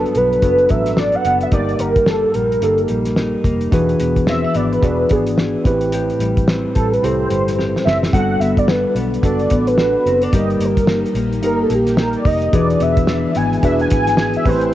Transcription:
Already playing: G2 F#3 B3 D4 F#4 A4 B4
0.06 closed hi-hat
0.15 B1 F#3 B4, closed hi-hat
0.33 closed hi-hat
0.42 F#1 B3 D4 F#4 A4 B4, kick, closed hi-hat
0.58 closed hi-hat
0.69 A1 F#3 E5, kick, closed hi-hat
0.86 snare, closed hi-hat
0.97 D4 D5, snare
1.12 F#5, closed hi-hat
1.25 F#1 B3, closed hi-hat
1.41 E5, closed hi-hat
1.51 G1 G2 A#3 D#4 G4 A#4 D5, kick, closed hi-hat
1.69 closed hi-hat
1.79 G1 G3 A#4, closed hi-hat
1.96 kick, closed hi-hat
2.06 A#3 A4, snare
2.34 A#1 G3 A#4, closed hi-hat
2.52 closed hi-hat
2.62 G1 A#3 D#4 G4 A4 A#4, closed hi-hat
2.78 closed hi-hat
2.88 A#1 G3, closed hi-hat
3.05 snare, closed hi-hat
3.16 D#4, snare
3.44 F1 A#3, kick, closed hi-hat
3.61 closed hi-hat
3.71 E1 E3 D4 F#4 G#4 B4, kick, closed hi-hat
3.89 closed hi-hat
4.00 E1 B3, closed hi-hat
4.16 kick, closed hi-hat
4.27 C4 E5, snare
4.44 D4
4.55 G#1 B3 D5, closed hi-hat
4.72 B4, closed hi-hat
4.81 E1 D4 F#4 G#4 B4 D5, kick, closed hi-hat
5.09 G#1 B3 G#4, kick, closed hi-hat
5.27 closed hi-hat
5.38 G#4, snare
5.64 A1 A2 C4 E4 G4 B4, kick, closed hi-hat
5.81 closed hi-hat
5.92 A2 G4, closed hi-hat
6.10 closed hi-hat
6.19 A1 G3, closed hi-hat
6.37 kick, closed hi-hat
6.48 C4, snare
6.74 A1 G3 A4, kick, closed hi-hat
6.92 B4, closed hi-hat
7.02 C2 C4 E4 G4 A4 C5, closed hi-hat
7.30 G1 G3, closed hi-hat
7.48 snare, closed hi-hat
7.58 G4, snare
7.76 snare
7.85 F#1 C4 E5, snare
8.03 snare
8.12 G1 G3 B3 D4 F#4 A4 F#5, kick, closed hi-hat
8.40 G1 B3 E5, closed hi-hat
8.57 D5, kick, closed hi-hat
8.68 D4 B4, snare
8.95 B1 B3, closed hi-hat
9.14 closed hi-hat
9.22 F#1 B3 D4 F#4 A4 D5, kick, closed hi-hat
9.39 closed hi-hat
9.50 A1 B3, kick, closed hi-hat
9.67 B4, closed hi-hat
9.78 F#4, snare
10.06 F#1 C4, closed hi-hat
10.22 D4 D5, closed hi-hat
10.32 G1 A#2 D#3 G3 A#3 D#4 G4 A#4 D#5, kick, closed hi-hat
10.50 closed hi-hat
10.57 G1 D5, closed hi-hat
10.62 A#3 A#4
10.77 kick, closed hi-hat
10.87 D#4, snare
11.06 closed hi-hat
11.14 A#1 A#3, closed hi-hat
11.32 closed hi-hat
11.42 G1 A#3 D#4 G4 A#4, closed hi-hat
11.46 A#4
11.62 A4
11.70 A#1 A#3, closed hi-hat
11.74 G4
11.87 snare, closed hi-hat
11.97 G4 A#4, snare
12.13 D5, closed hi-hat
12.25 F1 D#4 D#5, kick, open hi-hat
12.42 closed hi-hat
12.51 E1 E3 G#3 B3 D4 E4 F#4 G#4 B4 D5, kick, closed hi-hat
12.70 closed hi-hat
12.80 E1 B3 E5, closed hi-hat
12.97 kick, closed hi-hat
13.07 D4, snare
13.35 G#1 B3 G#5, closed hi-hat
13.53 closed hi-hat
13.63 E1 D4 F#4 G#4 B4 E5, kick, closed hi-hat
13.79 G#5, closed hi-hat
13.90 G#1 B3 G#5, kick, closed hi-hat
14.07 snare, closed hi-hat
14.17 G#4 G#5, snare
14.34 E5, closed hi-hat
14.44 A1 A2 C3 G3 A3 C4 E4 G4 B4, kick, open hi-hat
14.49 C5
14.61 closed hi-hat

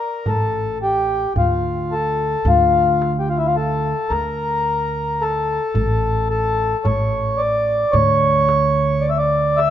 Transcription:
Already playing: A#4
0.26 A1 A4, darbuka dum
0.82 G4
1.36 D2 F4, darbuka dum
1.92 A4
2.45 D2 F4, darbuka dum
3.02 darbuka tek
3.19 G4
3.29 F4
3.37 E4
3.46 F4
3.56 A4
4.09 D2 A#4, darbuka tek
5.20 A4, darbuka ka
5.74 A1, darbuka dum
6.30 A4
6.84 A1 C#5, darbuka dum
7.37 D5
7.92 D2 C#5, darbuka dum
8.49 darbuka tek
9.01 D5, darbuka ka
9.10 E5
9.18 D5
9.57 E5, darbuka tek

